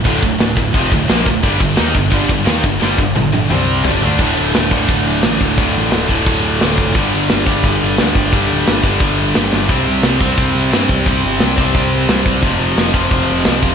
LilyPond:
<<
  \new Staff \with { instrumentName = "Distorted electric guitar" } { \clef bass \time 4/4 \key d \minor \tempo 4 = 175 <d, a, d>8 <d, a,>8 <d, a,>8 <d, a,>8 <f, c f>8 <d, a,>8 <bes, f bes>8 <d, a,>8 | <g, d g>8 <g, d>8 <ees bes ees'>8 <g, d>8 <g, d g>8 <g, d>8 <ees bes ees'>8 <g, d>8 | <g, d g>8 <g, d>8 <g, d>8 <g, d>8 <c g c'>4 <g, d g>8 <d a d'>8 | <d, a, d>4. <d, a, d>4. <d, a, d>4 |
<d, a, d>4. <d, a, d>4. <d, a, d>4 | <g, d g>4. <g, d g>4. <g, d g>4 | <g, d g>4. <g, d g>4. <g, d g>4 | <c g c'>4. <c g c'>4. <c g c'>4 |
<c g c'>4. <c g c'>4. <c g c'>4 | <f, c f>4. <f, c f>4. <f, c f>4 | }
  \new Staff \with { instrumentName = "Distorted electric guitar" } { \clef bass \time 4/4 \key d \minor <d, a, d>8 <d, a,>8 <d, a,>8 <d, a,>8 <f, c f>8 <d, a,>8 <bes, f bes>8 <d, a,>8 | <g, d g>8 <g, d>8 <ees bes ees'>8 <g, d>8 <g, d g>8 <g, d>8 <ees bes ees'>8 <g, d>8 | <g, d g>8 <g, d>8 <g, d>8 <g, d>8 <c g c'>4 <g, d g>8 <d a d'>8 | <d, a, d>4. <d, a, d>2~ <d, a, d>8 |
<d, a, d>4. <d, a, d>2~ <d, a, d>8 | <g, d g>4. <g, d g>2~ <g, d g>8 | <g, d g>4. <g, d g>2~ <g, d g>8 | <c g c'>4. <c g c'>2~ <c g c'>8 |
<c g c'>4. <c g c'>2~ <c g c'>8 | <f, c f>4. <f, c f>2~ <f, c f>8 | }
  \new Staff \with { instrumentName = "Distorted electric guitar" } { \clef bass \time 4/4 \key d \minor <d, a, d>8 <d, a,>8 <d, a,>8 <d, a,>8 <f, c f>8 <d, a,>8 <bes, f bes>8 <d, a,>8 | <g, d g>8 <g, d>8 <ees bes ees'>8 <g, d>8 <g, d g>8 <g, d>8 <ees bes ees'>8 <g, d>8 | <g, d g>8 <g, d>8 <g, d>8 <g, d>8 <c g c'>4 <g, d g>8 <d a d'>8 | <d, a, d>4. <d, a, d>2~ <d, a, d>8 |
<d, a, d>4. <d, a, d>2~ <d, a, d>8 | <g, d g>4. <g, d g>2~ <g, d g>8 | <g, d g>4. <g, d g>2~ <g, d g>8 | <c g c'>4. <c g c'>2~ <c g c'>8 |
<c g c'>4. <c g c'>2~ <c g c'>8 | <f, c f>4. <f, c f>2~ <f, c f>8 | }
  \new Staff \with { instrumentName = "Picked electric bass" } { \clef bass \time 4/4 \key d \minor d,,8 d,,8 d,,8 d,,8 f,,8 d,,8 bes,,8 d,,8 | g,,8 g,,8 ees,8 g,,8 g,,8 g,,8 ees,8 g,,8 | g,,8 g,,8 g,,8 g,,8 c,4 g,,8 d,8 | d,,8 d,,8 d,,8 d,,8 d,,8 d,,8 a,,8 d,,8 |
d,,8 a,,8 d,,4 d,,4 d,,8 f,,8 | g,,8 g,,8 g,,8 g,,8 g,,8 g,,8 d,8 g,,8 | g,,8 d,,8 g,,4 g,,4 g,,8 g,,8 | c,8 c,8 c,8 c,8 c,8 c,8 g,8 c,8 |
c,8 g,,8 c,4 c,4 c,8 c,8 | f,,8 f,,8 f,,8 f,,8 f,,8 f,,8 c,8 e,,8 | }
  \new DrumStaff \with { instrumentName = "Drums" } \drummode { \time 4/4 <cymc bd>8 <cymc bd>8 <cymc sn>8 <cymc bd>8 <cymc bd>8 <cymc bd>8 <cymc sn>8 <cymc bd>8 | <cymc bd>8 <cymc bd>8 <cymc sn>8 <cymc bd>8 <cymc bd>8 <cymc bd>8 <cymc sn>8 <cymc bd>8 | sn8 bd8 tommh8 tommh8 toml4 tomfh8 tomfh8 | <cymc bd>4 <cymc sn>8 bd8 <cymc bd>4 <cymc sn>8 bd8 |
<cymc bd>4 <cymc sn>8 bd8 <cymc bd>4 <cymc sn>8 bd8 | <cymc bd>4 <cymc sn>8 bd8 <cymc bd>4 <cymc sn>8 bd8 | <cymc bd>4 <cymc sn>8 bd8 <cymc bd>4 <cymc sn>8 sn8 | <cymc bd>4 <cymc sn>8 bd8 <cymc bd>4 <cymc sn>8 bd8 |
<cymc bd>4 <cymc sn>8 bd8 <cymc bd>4 <cymc sn>8 bd8 | <cymc bd>4 <cymc sn>8 bd8 <cymc bd>4 <cymc sn>8 bd8 | }
>>